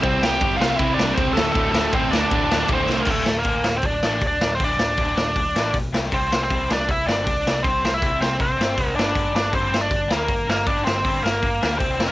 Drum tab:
CC |--------|--------|x-------|--------|
RD |x-x-x-x-|x-x-x-x-|--------|--------|
HH |--------|--------|--o-o-o-|o-o-o-o-|
SD |-o-o-o-o|-o-o-o-o|-o-o-o-o|-o-o-o-o|
BD |o-o-o-o-|o-o-o-o-|o-o-o-o-|o-o-o-o-|

CC |--------|--------|--------|--------|
RD |--------|--------|--------|--------|
HH |o-o-o-o-|o-o-o-o-|o-o-o-o-|o-o-o-o-|
SD |-o-o-o-o|-o-o-o-o|-o-o-o-o|-o-o-o-o|
BD |o-o-o-o-|o-o-o-o-|o-o-o-o-|o-o-o-o-|